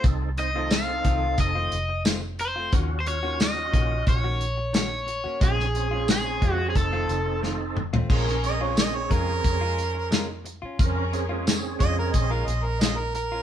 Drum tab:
CC |----------------|----------------|----------------|x---------------|
HH |x-x-x-x-x-x-x-x-|x-x-x-x-x-x-x-x-|x-x-x-x-x-x-----|--x-x-x-x-x-x-x-|
TB |----x-------x---|----x-------x---|----x-----------|----x-------x---|
SD |----o-------o---|----o-------o---|-o--o-------o---|-o--o-------o---|
T2 |----------------|----------------|--------------o-|----------------|
FT |----------------|----------------|---------------o|----------------|
BD |o-----o-o-------|o-----o-o-------|o-----o-o-------|o-----o-o-------|

CC |----------------|
HH |x-x-x-x-x-x-x-x-|
TB |----x-------x---|
SD |----o-------o---|
T2 |----------------|
FT |----------------|
BD |o-----o-o-------|